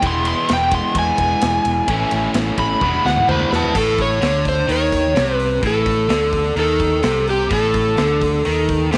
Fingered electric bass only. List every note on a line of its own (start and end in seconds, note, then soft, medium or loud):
0.03 0.32 E1 loud
0.50 0.79 E1 medium
0.95 1.10 E2 medium
1.18 1.33 E1 medium
1.43 1.57 E1 medium
1.65 1.80 E1 medium
1.88 2.03 A1 loud
2.12 2.27 A1 medium
2.35 2.50 A1 medium
2.58 2.73 A1 medium
2.82 2.97 E1 medium
3.05 3.20 D2 medium
3.28 3.43 D2 medium
3.51 3.66 E2 medium
3.76 4.19 A1 medium
4.22 4.66 D2 medium
4.69 5.13 D#2 medium
5.17 5.61 C2 medium
5.63 6.07 A1 loud
6.10 6.54 D2 medium
6.56 7.00 D#2 medium
7.04 7.48 C2 loud
7.51 7.95 A1 medium
7.99 8.43 D2 medium
8.46 8.90 D#2 medium
8.94 8.98 C2 medium